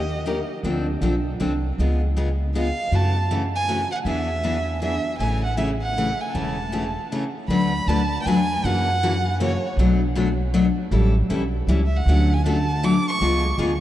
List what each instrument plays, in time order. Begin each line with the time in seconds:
Already playing: upright bass D#2, violin D#5
0.26 steel-string acoustic guitar D#3 A#3 C#4 G4 A#4
0.63 upright bass D2, steel-string acoustic guitar D3 F3 C4 D4 A4
1.01 upright bass B1, steel-string acoustic guitar D3 F3 C4 D4 A4
1.40 upright bass C2, steel-string acoustic guitar D3 F3 C4 D4 A4
1.78 upright bass C#2, steel-string acoustic guitar C#3 G#3 B3 F4 G#4
2.17 steel-string acoustic guitar C#3 G#3 B3 F4 G#4
2.55 steel-string acoustic guitar C#3 G#3 B3 F4 G#4, violin F5
2.92 upright bass F#2, steel-string acoustic guitar C#3 E3 A3 C#4 F#4, violin A5
3.31 steel-string acoustic guitar C#3 E3 A3 C#4 F#4
3.56 violin G#5
3.68 steel-string acoustic guitar C#3 E3 A3 C#4 F#4
3.92 violin F#5
4.05 upright bass E2, steel-string acoustic guitar E3 B3 D4 G#4, violin E5
4.44 steel-string acoustic guitar E3 B3 D4 G#4
4.82 steel-string acoustic guitar E3 B3 D4 G#4, violin E5
5.18 upright bass A1, steel-string acoustic guitar C#3 E3 A3 C#4 G#4, violin G#5
5.44 violin F#5
5.57 steel-string acoustic guitar C#3 E3 A3 C#4 G#4, violin E5
5.82 violin F#5
5.97 steel-string acoustic guitar C#3 E3 A3 C#4 G#4
6.20 violin G#5
6.30 violin G#5 A5
6.35 upright bass E1, steel-string acoustic guitar C#3 E3 A3 C#4 G#4
6.72 steel-string acoustic guitar C#3 E3 A3 C#4 G#4
7.12 steel-string acoustic guitar C#3 E3 A3 C#4 G#4
7.48 upright bass D2, steel-string acoustic guitar D3 F#3 A3 D4 F#4 B4, violin B5
7.87 upright bass D2, steel-string acoustic guitar D3 F#3 A3 D4 F#4 B4, violin A5
8.22 violin G5
8.26 upright bass E2, steel-string acoustic guitar D3 F#3 A3 D4 F#4 B4, violin G#5
8.64 upright bass F#2, steel-string acoustic guitar C#3 E3 A#3 C#4 F#4, violin F#5
9.03 steel-string acoustic guitar C#3 E3 A#3 C#4 F#4
9.40 steel-string acoustic guitar C#3 E3 A#3 C#4 F#4, violin C#5
9.77 upright bass B1, steel-string acoustic guitar B2 F#3 A3 D4 F#4
10.15 steel-string acoustic guitar B2 F#3 A3 D4 F#4
10.54 steel-string acoustic guitar B2 F#3 A3 D4 F#4
10.91 upright bass A1, steel-string acoustic guitar E3 G3 C#4 E4 A4
11.30 upright bass B1, steel-string acoustic guitar E3 G3 C#4 E4 A4
11.67 upright bass C#2, steel-string acoustic guitar E3 G3 C#4 E4 A4
11.86 violin E5
11.97 violin F#5
12.06 upright bass D2, steel-string acoustic guitar D3 F#3 A3 C#4 F#4
12.33 violin G#5
12.45 steel-string acoustic guitar D3 F#3 A3 C#4 F#4, violin A5
12.83 steel-string acoustic guitar D3 F#3 A3 C#4 F#4, violin D6
13.08 violin C#6
13.21 upright bass C#2, steel-string acoustic guitar C#3 G#3 B3 F4 G#4
13.58 upright bass D2, steel-string acoustic guitar C#3 G#3 B3 F4 G#4